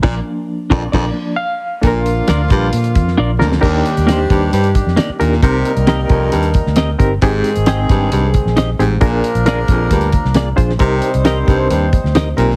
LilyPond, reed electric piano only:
<<
  \new Staff \with { instrumentName = "Reed electric piano" } { \time 4/4 \key bes \mixolydian \tempo 4 = 134 r2 d''4 f''4 | <bes d' f' a' bes'>4 r2 r8 <bes d' f' bes'>8 | <d' ees' g' bes'>8 r8 <d' ees' g' bes' c''>4 r4. <d' ees' g' bes'>8 | <c' ees' g' bes'>8 r8 <c' ees' g' bes'>4 r4. <c' ees' g' bes'>8 |
<c' ees' g' aes'>8 r8 <c' ees' aes' g''>4 r4. <c' ees' g' aes'>8 | <d' f' aes' bes'>8 r8 <d' f' aes' bes'>4 r4. <d' f' aes' c''>8 | <c' ees' g' bes'>8 r8 <c' ees' g' bes'>4 r4. <c' ees' g' bes'>8 | }
  \new Staff \with { instrumentName = "Reed electric piano" } { \time 4/4 \key bes \mixolydian <f bes d'>2~ <f bes d'>8 <f bes d'>8 r4 | r1 | r1 | r1 |
r1 | r1 | r1 | }
>>